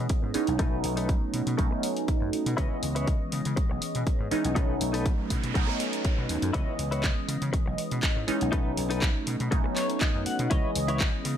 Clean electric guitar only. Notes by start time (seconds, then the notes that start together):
0.22 muted clean electric guitar stroke
0.59 D#4 A4 B4
0.97 D#4 A4 B4
1.33 muted clean electric guitar stroke
1.58 muted clean electric guitar stroke
1.71 muted clean electric guitar stroke
1.82 muted clean electric guitar stroke
2.20 muted clean electric guitar stroke
2.57 E4 B4 C#5
2.95 E4 B4 C#5
3.32 muted clean electric guitar stroke
3.56 muted clean electric guitar stroke
3.70 muted clean electric guitar stroke
3.81 muted clean electric guitar stroke
4.19 muted clean electric guitar stroke
4.55 D#4 A4 B4
4.93 D#4 A4 B4
5.29 muted clean electric guitar stroke
5.54 muted clean electric guitar stroke
5.67 muted clean electric guitar stroke
5.79 muted clean electric guitar stroke
6.17 muted clean electric guitar stroke
6.53 E4 B4 C#5
6.91 E4 B4 C#5
7.28 muted clean electric guitar stroke
7.53 muted clean electric guitar stroke
7.66 muted clean electric guitar stroke
7.78 muted clean electric guitar stroke
8.16 muted clean electric guitar stroke
8.52 D#4 A4 B4
8.90 D#4 A4 B4
9.26 muted clean electric guitar stroke
9.51 muted clean electric guitar stroke
9.64 muted clean electric guitar stroke
9.76 C#5, muted clean electric guitar stroke
10.01 D#5
10.14 muted clean electric guitar stroke
10.26 F#5
10.50 E4 B4 C#5
10.88 E4 B4 C#5
11.25 muted clean electric guitar stroke